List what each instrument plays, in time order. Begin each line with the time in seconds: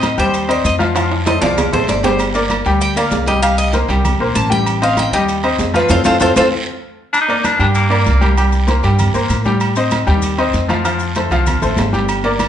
Already playing: upright bass A2, upright piano C4 C5 D#5, cuban tres D#5
0.03 high conga, low agogo, short guiro, maracas
0.18 upright bass D#2, upright piano G3 G4 G5, cuban tres C5, high conga, short guiro, maracas
0.34 high conga, low agogo, long guiro, maracas
0.48 upright piano C4 C5 D#5, cuban tres D5, high conga, low agogo
0.64 upright bass F2, cuban tres D#5, high conga, short guiro, maracas
0.79 upright piano F3 F4 F5, high conga, low agogo, short guiro, maracas
0.95 upright piano F3 F4 F5, high conga, high timbale, low agogo, long guiro, maracas
1.11 high conga, high timbale
1.26 upright piano A3 A4 C5, cuban tres D#5, high conga, high timbale, low agogo, short guiro, maracas
1.41 upright bass C2, upright piano F3 F4 F5, cuban tres D5, high conga, low timbale, low agogo, short guiro, maracas
1.58 high conga, low conga, low timbale, low agogo, long guiro, maracas
1.73 upright bass A1, upright piano A3 A4 C5, cuban tres C5, high conga, low conga, low timbale
1.87 upright bass G1, cuban tres D5, high conga, low timbale, low agogo, short guiro, maracas
2.03 upright piano G3 G4 G5, cuban tres C5, high conga, low timbale, short guiro, maracas
2.19 high conga, low agogo, long guiro, maracas
2.34 upright piano A#3 A#4 D5, high conga, low agogo, maracas
2.50 high conga, low agogo, short guiro, maracas
2.65 upright bass D2, upright piano G3 G4 G5, high conga, short guiro, maracas
2.80 cuban tres G5, high conga, low agogo, long guiro, maracas
2.96 upright piano A#3 A#4 D5, cuban tres F5, high conga, low agogo, maracas
3.11 upright bass C2, high conga, low timbale, short guiro, maracas
3.26 upright piano G3 G4 G5, cuban tres D#5, high conga, low agogo, short guiro, maracas
3.42 upright piano G3 G4 G5, cuban tres F5, high conga, low agogo, long guiro, maracas
3.58 cuban tres D#5, high conga, maracas
3.73 upright piano A#3 A#4 C5, high conga, low agogo, short guiro, maracas
3.88 upright bass C2, upright piano G3 G4 G5, high conga, low agogo, short guiro, maracas
4.04 high conga, low conga, low agogo, long guiro, maracas
4.19 upright bass A#1, upright piano A#3 A#4 C5, high conga
4.34 upright bass A1, cuban tres A5, high conga, low agogo, short guiro, maracas
4.50 upright piano G3 G4 G5, cuban tres G5, high conga, short guiro, maracas
4.66 high conga, low agogo, long guiro, maracas
4.82 upright piano C4 C5 D#5, cuban tres F5, high conga, low agogo
4.97 cuban tres G5, high conga, low agogo, short guiro, maracas
5.12 upright bass D#2, upright piano G3 G4 G5, cuban tres D#5, high conga, short guiro, maracas
5.28 high conga, low agogo, long guiro, maracas
5.44 upright piano C4 C5 D#5, high conga, low agogo
5.59 upright bass F2, high conga, low timbale, short guiro, maracas
5.74 upright piano F3 F4 F5, cuban tres B4, high conga, low agogo, short guiro, maracas
5.89 upright bass F2, upright piano C4 F4 A4, cuban tres A4 C5 F5, high conga, high timbale, long guiro, maracas
6.04 upright bass F2, upright piano C4 F4 A4, cuban tres A4 C5 F5, high conga, high timbale, long guiro, maracas
6.20 upright bass F2, upright piano C4 F4 A4, cuban tres A4 C5 F5, high conga, high timbale, long guiro, maracas
6.36 upright bass F2, upright piano C4 F4 A4, cuban tres A4 C5 F5, high conga, high timbale, long guiro, maracas
7.13 baritone saxophone D4, high conga, low agogo, long guiro, maracas
7.21 baritone saxophone D#4
7.28 upright piano A#3 A#4 D5, high conga, low agogo
7.44 baritone saxophone D4, high conga, low agogo, short guiro, maracas
7.59 upright bass G2, upright piano G3 G4 G5, baritone saxophone D4, high conga, short guiro, maracas
7.75 baritone saxophone A#3, high conga, low agogo, long guiro, maracas
7.90 upright piano A#3 A#4 D5, high conga, low agogo
8.06 upright bass C2, high conga, short guiro, maracas
8.21 upright piano G3 G4 G5, high conga, low agogo, short guiro, maracas
8.37 upright piano G3 G4 G5, low agogo, long guiro, maracas
8.52 high conga, maracas
8.67 upright piano A#3 A#4 C5, high conga, low agogo, short guiro, maracas
8.83 upright bass G2, upright piano G3 G4 G5, high conga, low agogo, short guiro, maracas
8.99 high conga, low conga, low agogo, long guiro, maracas
9.14 upright piano A#3 A#4 C5, high conga, maracas
9.29 upright bass A2, high conga, low agogo, short guiro, maracas
9.45 upright piano G3 G4 G5, high conga, short guiro, maracas
9.60 low agogo, long guiro, maracas
9.76 upright piano C4 C5 D#5, high conga, low agogo, maracas
9.91 high conga, low agogo, short guiro, maracas
10.07 upright bass D#2, upright piano G3 G4 G5, high conga, short guiro, maracas
10.22 high conga, low agogo, long guiro, maracas
10.38 upright piano C4 C5 D#5, high conga, low agogo
10.53 upright bass F2, high conga, short guiro, maracas
10.68 upright piano F3 F4 F5, high conga, low agogo, short guiro, maracas
10.84 upright piano F3 F4 F5, high conga, low agogo, long guiro, maracas
10.99 high conga, maracas
11.15 upright piano A3 A4 C5, high conga, low agogo, short guiro, maracas
11.30 upright bass C2, upright piano F3 F4 F5, high conga, low agogo, short guiro, maracas
11.46 high conga, low conga, low agogo, long guiro, maracas
11.62 upright bass A1, upright piano A3 A4 C5, high conga, low conga, maracas
11.77 upright bass G1, high conga, low timbale, low agogo, short guiro, maracas
11.93 upright piano G3 G4 G5, high conga, short guiro, maracas
12.09 high conga, low agogo, long guiro, maracas
12.24 upright piano A#3 A#4 D5, high conga, low agogo
12.39 high conga, low agogo, short guiro, maracas